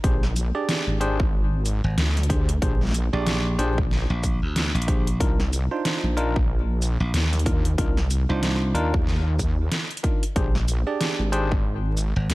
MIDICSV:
0, 0, Header, 1, 5, 480
1, 0, Start_track
1, 0, Tempo, 645161
1, 31, Time_signature, 4, 2, 24, 8
1, 9181, End_track
2, 0, Start_track
2, 0, Title_t, "Tine electric piano"
2, 0, Program_c, 0, 4
2, 28, Note_on_c, 0, 68, 82
2, 29, Note_on_c, 0, 62, 87
2, 29, Note_on_c, 0, 67, 82
2, 29, Note_on_c, 0, 72, 100
2, 170, Note_off_c, 0, 62, 0
2, 170, Note_off_c, 0, 67, 0
2, 170, Note_off_c, 0, 68, 0
2, 170, Note_off_c, 0, 72, 0
2, 408, Note_on_c, 0, 67, 81
2, 409, Note_on_c, 0, 68, 82
2, 409, Note_on_c, 0, 74, 101
2, 410, Note_on_c, 0, 62, 87
2, 725, Note_off_c, 0, 67, 0
2, 725, Note_off_c, 0, 68, 0
2, 725, Note_off_c, 0, 74, 0
2, 726, Note_off_c, 0, 62, 0
2, 748, Note_on_c, 0, 67, 94
2, 748, Note_on_c, 0, 68, 96
2, 749, Note_on_c, 0, 62, 103
2, 749, Note_on_c, 0, 72, 118
2, 890, Note_off_c, 0, 67, 0
2, 890, Note_off_c, 0, 68, 0
2, 891, Note_off_c, 0, 62, 0
2, 891, Note_off_c, 0, 72, 0
2, 1707, Note_on_c, 0, 62, 77
2, 1707, Note_on_c, 0, 67, 71
2, 1707, Note_on_c, 0, 68, 72
2, 1707, Note_on_c, 0, 72, 85
2, 1849, Note_off_c, 0, 67, 0
2, 1850, Note_off_c, 0, 62, 0
2, 1850, Note_off_c, 0, 68, 0
2, 1850, Note_off_c, 0, 72, 0
2, 1948, Note_on_c, 0, 62, 88
2, 1948, Note_on_c, 0, 67, 79
2, 1948, Note_on_c, 0, 68, 83
2, 1949, Note_on_c, 0, 72, 98
2, 2090, Note_off_c, 0, 62, 0
2, 2090, Note_off_c, 0, 67, 0
2, 2090, Note_off_c, 0, 68, 0
2, 2091, Note_off_c, 0, 72, 0
2, 2329, Note_on_c, 0, 67, 80
2, 2330, Note_on_c, 0, 62, 89
2, 2330, Note_on_c, 0, 68, 80
2, 2331, Note_on_c, 0, 74, 96
2, 2646, Note_off_c, 0, 62, 0
2, 2646, Note_off_c, 0, 67, 0
2, 2646, Note_off_c, 0, 68, 0
2, 2646, Note_off_c, 0, 74, 0
2, 2668, Note_on_c, 0, 62, 106
2, 2668, Note_on_c, 0, 67, 96
2, 2668, Note_on_c, 0, 68, 95
2, 2669, Note_on_c, 0, 72, 115
2, 2810, Note_off_c, 0, 62, 0
2, 2810, Note_off_c, 0, 67, 0
2, 2810, Note_off_c, 0, 68, 0
2, 2811, Note_off_c, 0, 72, 0
2, 3628, Note_on_c, 0, 62, 77
2, 3628, Note_on_c, 0, 68, 71
2, 3628, Note_on_c, 0, 72, 84
2, 3629, Note_on_c, 0, 67, 72
2, 3770, Note_off_c, 0, 62, 0
2, 3770, Note_off_c, 0, 67, 0
2, 3770, Note_off_c, 0, 68, 0
2, 3770, Note_off_c, 0, 72, 0
2, 3869, Note_on_c, 0, 65, 81
2, 3869, Note_on_c, 0, 70, 97
2, 3870, Note_on_c, 0, 62, 92
2, 3870, Note_on_c, 0, 63, 81
2, 4010, Note_off_c, 0, 65, 0
2, 4011, Note_off_c, 0, 62, 0
2, 4011, Note_off_c, 0, 63, 0
2, 4011, Note_off_c, 0, 70, 0
2, 4251, Note_on_c, 0, 72, 96
2, 4252, Note_on_c, 0, 62, 89
2, 4252, Note_on_c, 0, 65, 81
2, 4253, Note_on_c, 0, 63, 80
2, 4567, Note_off_c, 0, 62, 0
2, 4567, Note_off_c, 0, 63, 0
2, 4567, Note_off_c, 0, 65, 0
2, 4567, Note_off_c, 0, 72, 0
2, 4589, Note_on_c, 0, 65, 98
2, 4590, Note_on_c, 0, 62, 102
2, 4590, Note_on_c, 0, 63, 95
2, 4590, Note_on_c, 0, 70, 114
2, 4731, Note_off_c, 0, 62, 0
2, 4731, Note_off_c, 0, 63, 0
2, 4731, Note_off_c, 0, 65, 0
2, 4731, Note_off_c, 0, 70, 0
2, 5547, Note_on_c, 0, 62, 78
2, 5547, Note_on_c, 0, 70, 89
2, 5548, Note_on_c, 0, 63, 71
2, 5548, Note_on_c, 0, 65, 74
2, 5690, Note_off_c, 0, 62, 0
2, 5690, Note_off_c, 0, 63, 0
2, 5690, Note_off_c, 0, 65, 0
2, 5690, Note_off_c, 0, 70, 0
2, 5788, Note_on_c, 0, 63, 81
2, 5788, Note_on_c, 0, 65, 80
2, 5789, Note_on_c, 0, 70, 103
2, 5790, Note_on_c, 0, 62, 87
2, 5930, Note_off_c, 0, 63, 0
2, 5930, Note_off_c, 0, 65, 0
2, 5930, Note_off_c, 0, 70, 0
2, 5931, Note_off_c, 0, 62, 0
2, 6170, Note_on_c, 0, 65, 81
2, 6170, Note_on_c, 0, 72, 96
2, 6171, Note_on_c, 0, 62, 88
2, 6171, Note_on_c, 0, 63, 81
2, 6486, Note_off_c, 0, 62, 0
2, 6486, Note_off_c, 0, 63, 0
2, 6486, Note_off_c, 0, 65, 0
2, 6486, Note_off_c, 0, 72, 0
2, 6507, Note_on_c, 0, 62, 104
2, 6507, Note_on_c, 0, 63, 97
2, 6507, Note_on_c, 0, 65, 99
2, 6507, Note_on_c, 0, 70, 116
2, 6649, Note_off_c, 0, 65, 0
2, 6650, Note_off_c, 0, 62, 0
2, 6650, Note_off_c, 0, 63, 0
2, 6650, Note_off_c, 0, 70, 0
2, 7465, Note_on_c, 0, 62, 80
2, 7465, Note_on_c, 0, 70, 86
2, 7466, Note_on_c, 0, 63, 72
2, 7466, Note_on_c, 0, 65, 72
2, 7609, Note_off_c, 0, 62, 0
2, 7609, Note_off_c, 0, 63, 0
2, 7609, Note_off_c, 0, 65, 0
2, 7609, Note_off_c, 0, 70, 0
2, 7706, Note_on_c, 0, 67, 84
2, 7707, Note_on_c, 0, 62, 89
2, 7707, Note_on_c, 0, 68, 83
2, 7707, Note_on_c, 0, 72, 100
2, 7849, Note_off_c, 0, 62, 0
2, 7849, Note_off_c, 0, 67, 0
2, 7849, Note_off_c, 0, 68, 0
2, 7849, Note_off_c, 0, 72, 0
2, 8086, Note_on_c, 0, 67, 82
2, 8086, Note_on_c, 0, 68, 82
2, 8087, Note_on_c, 0, 62, 92
2, 8087, Note_on_c, 0, 74, 98
2, 8404, Note_off_c, 0, 62, 0
2, 8404, Note_off_c, 0, 67, 0
2, 8404, Note_off_c, 0, 68, 0
2, 8404, Note_off_c, 0, 74, 0
2, 8423, Note_on_c, 0, 62, 107
2, 8424, Note_on_c, 0, 68, 99
2, 8424, Note_on_c, 0, 72, 119
2, 8425, Note_on_c, 0, 67, 99
2, 8568, Note_off_c, 0, 62, 0
2, 8568, Note_off_c, 0, 68, 0
2, 8568, Note_off_c, 0, 72, 0
2, 8569, Note_off_c, 0, 67, 0
2, 9181, End_track
3, 0, Start_track
3, 0, Title_t, "Slap bass"
3, 0, Program_c, 1, 36
3, 1369, Note_on_c, 1, 32, 98
3, 1453, Note_off_c, 1, 32, 0
3, 2331, Note_on_c, 1, 34, 99
3, 2654, Note_off_c, 1, 34, 0
3, 3050, Note_on_c, 1, 34, 101
3, 3269, Note_off_c, 1, 34, 0
3, 3289, Note_on_c, 1, 38, 98
3, 3508, Note_off_c, 1, 38, 0
3, 3531, Note_on_c, 1, 34, 98
3, 3854, Note_off_c, 1, 34, 0
3, 5210, Note_on_c, 1, 34, 99
3, 5294, Note_off_c, 1, 34, 0
3, 6173, Note_on_c, 1, 36, 103
3, 6495, Note_off_c, 1, 36, 0
3, 9048, Note_on_c, 1, 32, 102
3, 9133, Note_off_c, 1, 32, 0
3, 9181, End_track
4, 0, Start_track
4, 0, Title_t, "Wobble bass"
4, 0, Program_c, 2, 39
4, 28, Note_on_c, 2, 34, 95
4, 388, Note_off_c, 2, 34, 0
4, 649, Note_on_c, 2, 32, 98
4, 1348, Note_off_c, 2, 32, 0
4, 1469, Note_on_c, 2, 38, 95
4, 1934, Note_off_c, 2, 38, 0
4, 1949, Note_on_c, 2, 34, 97
4, 2308, Note_off_c, 2, 34, 0
4, 2667, Note_on_c, 2, 34, 100
4, 3028, Note_off_c, 2, 34, 0
4, 3871, Note_on_c, 2, 36, 99
4, 4230, Note_off_c, 2, 36, 0
4, 4492, Note_on_c, 2, 34, 100
4, 5189, Note_off_c, 2, 34, 0
4, 5310, Note_on_c, 2, 39, 98
4, 5774, Note_off_c, 2, 39, 0
4, 5791, Note_on_c, 2, 36, 96
4, 6149, Note_off_c, 2, 36, 0
4, 6507, Note_on_c, 2, 39, 99
4, 7213, Note_off_c, 2, 39, 0
4, 7707, Note_on_c, 2, 34, 98
4, 8067, Note_off_c, 2, 34, 0
4, 8329, Note_on_c, 2, 32, 101
4, 9028, Note_off_c, 2, 32, 0
4, 9147, Note_on_c, 2, 38, 98
4, 9181, Note_off_c, 2, 38, 0
4, 9181, End_track
5, 0, Start_track
5, 0, Title_t, "Drums"
5, 29, Note_on_c, 9, 36, 126
5, 29, Note_on_c, 9, 42, 83
5, 103, Note_off_c, 9, 36, 0
5, 104, Note_off_c, 9, 42, 0
5, 172, Note_on_c, 9, 40, 52
5, 246, Note_off_c, 9, 40, 0
5, 270, Note_on_c, 9, 42, 74
5, 270, Note_on_c, 9, 82, 64
5, 345, Note_off_c, 9, 42, 0
5, 345, Note_off_c, 9, 82, 0
5, 511, Note_on_c, 9, 38, 127
5, 511, Note_on_c, 9, 42, 86
5, 586, Note_off_c, 9, 38, 0
5, 586, Note_off_c, 9, 42, 0
5, 751, Note_on_c, 9, 42, 69
5, 826, Note_off_c, 9, 42, 0
5, 891, Note_on_c, 9, 36, 115
5, 965, Note_off_c, 9, 36, 0
5, 1232, Note_on_c, 9, 42, 70
5, 1232, Note_on_c, 9, 82, 60
5, 1306, Note_off_c, 9, 42, 0
5, 1306, Note_off_c, 9, 82, 0
5, 1471, Note_on_c, 9, 38, 127
5, 1471, Note_on_c, 9, 42, 86
5, 1545, Note_off_c, 9, 38, 0
5, 1545, Note_off_c, 9, 42, 0
5, 1614, Note_on_c, 9, 40, 38
5, 1614, Note_on_c, 9, 42, 49
5, 1662, Note_off_c, 9, 42, 0
5, 1662, Note_on_c, 9, 42, 66
5, 1689, Note_off_c, 9, 40, 0
5, 1710, Note_on_c, 9, 36, 114
5, 1711, Note_off_c, 9, 42, 0
5, 1711, Note_on_c, 9, 42, 67
5, 1784, Note_off_c, 9, 36, 0
5, 1785, Note_off_c, 9, 42, 0
5, 1851, Note_on_c, 9, 42, 84
5, 1926, Note_off_c, 9, 42, 0
5, 1950, Note_on_c, 9, 36, 122
5, 1951, Note_on_c, 9, 42, 78
5, 2024, Note_off_c, 9, 36, 0
5, 2025, Note_off_c, 9, 42, 0
5, 2093, Note_on_c, 9, 40, 24
5, 2108, Note_off_c, 9, 40, 0
5, 2108, Note_on_c, 9, 40, 27
5, 2123, Note_off_c, 9, 40, 0
5, 2123, Note_on_c, 9, 40, 30
5, 2135, Note_off_c, 9, 40, 0
5, 2135, Note_on_c, 9, 40, 34
5, 2149, Note_off_c, 9, 40, 0
5, 2149, Note_on_c, 9, 40, 38
5, 2163, Note_off_c, 9, 40, 0
5, 2163, Note_on_c, 9, 40, 42
5, 2177, Note_off_c, 9, 40, 0
5, 2177, Note_on_c, 9, 40, 43
5, 2190, Note_on_c, 9, 42, 71
5, 2190, Note_on_c, 9, 82, 65
5, 2251, Note_off_c, 9, 40, 0
5, 2264, Note_off_c, 9, 42, 0
5, 2264, Note_off_c, 9, 82, 0
5, 2429, Note_on_c, 9, 38, 125
5, 2429, Note_on_c, 9, 42, 79
5, 2504, Note_off_c, 9, 38, 0
5, 2504, Note_off_c, 9, 42, 0
5, 2671, Note_on_c, 9, 42, 64
5, 2745, Note_off_c, 9, 42, 0
5, 2812, Note_on_c, 9, 36, 108
5, 2887, Note_off_c, 9, 36, 0
5, 2911, Note_on_c, 9, 38, 38
5, 2986, Note_off_c, 9, 38, 0
5, 3151, Note_on_c, 9, 36, 65
5, 3151, Note_on_c, 9, 42, 66
5, 3151, Note_on_c, 9, 82, 61
5, 3225, Note_off_c, 9, 36, 0
5, 3226, Note_off_c, 9, 42, 0
5, 3226, Note_off_c, 9, 82, 0
5, 3392, Note_on_c, 9, 38, 123
5, 3392, Note_on_c, 9, 42, 81
5, 3467, Note_off_c, 9, 38, 0
5, 3467, Note_off_c, 9, 42, 0
5, 3536, Note_on_c, 9, 42, 50
5, 3583, Note_off_c, 9, 42, 0
5, 3583, Note_on_c, 9, 42, 63
5, 3631, Note_off_c, 9, 42, 0
5, 3631, Note_on_c, 9, 36, 107
5, 3631, Note_on_c, 9, 42, 64
5, 3705, Note_off_c, 9, 36, 0
5, 3706, Note_off_c, 9, 42, 0
5, 3774, Note_on_c, 9, 42, 79
5, 3849, Note_off_c, 9, 42, 0
5, 3872, Note_on_c, 9, 36, 122
5, 3873, Note_on_c, 9, 42, 76
5, 3946, Note_off_c, 9, 36, 0
5, 3948, Note_off_c, 9, 42, 0
5, 4015, Note_on_c, 9, 40, 52
5, 4089, Note_off_c, 9, 40, 0
5, 4115, Note_on_c, 9, 42, 67
5, 4115, Note_on_c, 9, 82, 68
5, 4189, Note_off_c, 9, 42, 0
5, 4189, Note_off_c, 9, 82, 0
5, 4353, Note_on_c, 9, 38, 127
5, 4353, Note_on_c, 9, 42, 81
5, 4428, Note_off_c, 9, 38, 0
5, 4428, Note_off_c, 9, 42, 0
5, 4594, Note_on_c, 9, 42, 64
5, 4669, Note_off_c, 9, 42, 0
5, 4733, Note_on_c, 9, 36, 106
5, 4808, Note_off_c, 9, 36, 0
5, 5075, Note_on_c, 9, 42, 64
5, 5075, Note_on_c, 9, 82, 66
5, 5150, Note_off_c, 9, 42, 0
5, 5150, Note_off_c, 9, 82, 0
5, 5312, Note_on_c, 9, 38, 123
5, 5312, Note_on_c, 9, 42, 80
5, 5386, Note_off_c, 9, 38, 0
5, 5386, Note_off_c, 9, 42, 0
5, 5453, Note_on_c, 9, 40, 38
5, 5453, Note_on_c, 9, 42, 46
5, 5501, Note_off_c, 9, 42, 0
5, 5501, Note_on_c, 9, 42, 62
5, 5527, Note_off_c, 9, 40, 0
5, 5551, Note_off_c, 9, 42, 0
5, 5551, Note_on_c, 9, 36, 110
5, 5551, Note_on_c, 9, 42, 63
5, 5625, Note_off_c, 9, 42, 0
5, 5626, Note_off_c, 9, 36, 0
5, 5693, Note_on_c, 9, 42, 77
5, 5767, Note_off_c, 9, 42, 0
5, 5790, Note_on_c, 9, 36, 114
5, 5791, Note_on_c, 9, 42, 77
5, 5865, Note_off_c, 9, 36, 0
5, 5865, Note_off_c, 9, 42, 0
5, 5932, Note_on_c, 9, 40, 52
5, 6007, Note_off_c, 9, 40, 0
5, 6031, Note_on_c, 9, 42, 65
5, 6031, Note_on_c, 9, 82, 71
5, 6106, Note_off_c, 9, 42, 0
5, 6106, Note_off_c, 9, 82, 0
5, 6270, Note_on_c, 9, 38, 114
5, 6270, Note_on_c, 9, 42, 76
5, 6344, Note_off_c, 9, 38, 0
5, 6344, Note_off_c, 9, 42, 0
5, 6510, Note_on_c, 9, 42, 65
5, 6585, Note_off_c, 9, 42, 0
5, 6651, Note_on_c, 9, 36, 104
5, 6725, Note_off_c, 9, 36, 0
5, 6749, Note_on_c, 9, 38, 35
5, 6824, Note_off_c, 9, 38, 0
5, 6989, Note_on_c, 9, 36, 63
5, 6989, Note_on_c, 9, 42, 65
5, 6989, Note_on_c, 9, 82, 68
5, 7063, Note_off_c, 9, 36, 0
5, 7064, Note_off_c, 9, 42, 0
5, 7064, Note_off_c, 9, 82, 0
5, 7228, Note_on_c, 9, 38, 118
5, 7228, Note_on_c, 9, 42, 76
5, 7303, Note_off_c, 9, 38, 0
5, 7303, Note_off_c, 9, 42, 0
5, 7370, Note_on_c, 9, 42, 47
5, 7418, Note_off_c, 9, 42, 0
5, 7418, Note_on_c, 9, 42, 61
5, 7468, Note_off_c, 9, 42, 0
5, 7468, Note_on_c, 9, 42, 65
5, 7469, Note_on_c, 9, 36, 103
5, 7542, Note_off_c, 9, 42, 0
5, 7543, Note_off_c, 9, 36, 0
5, 7610, Note_on_c, 9, 42, 76
5, 7685, Note_off_c, 9, 42, 0
5, 7707, Note_on_c, 9, 36, 114
5, 7707, Note_on_c, 9, 42, 78
5, 7782, Note_off_c, 9, 36, 0
5, 7782, Note_off_c, 9, 42, 0
5, 7850, Note_on_c, 9, 40, 55
5, 7924, Note_off_c, 9, 40, 0
5, 7948, Note_on_c, 9, 42, 68
5, 7948, Note_on_c, 9, 82, 72
5, 8023, Note_off_c, 9, 42, 0
5, 8023, Note_off_c, 9, 82, 0
5, 8189, Note_on_c, 9, 38, 117
5, 8189, Note_on_c, 9, 42, 81
5, 8263, Note_off_c, 9, 38, 0
5, 8263, Note_off_c, 9, 42, 0
5, 8427, Note_on_c, 9, 42, 67
5, 8502, Note_off_c, 9, 42, 0
5, 8569, Note_on_c, 9, 36, 100
5, 8643, Note_off_c, 9, 36, 0
5, 8908, Note_on_c, 9, 42, 66
5, 8908, Note_on_c, 9, 82, 69
5, 8982, Note_off_c, 9, 42, 0
5, 8982, Note_off_c, 9, 82, 0
5, 9148, Note_on_c, 9, 38, 120
5, 9148, Note_on_c, 9, 42, 81
5, 9181, Note_off_c, 9, 38, 0
5, 9181, Note_off_c, 9, 42, 0
5, 9181, End_track
0, 0, End_of_file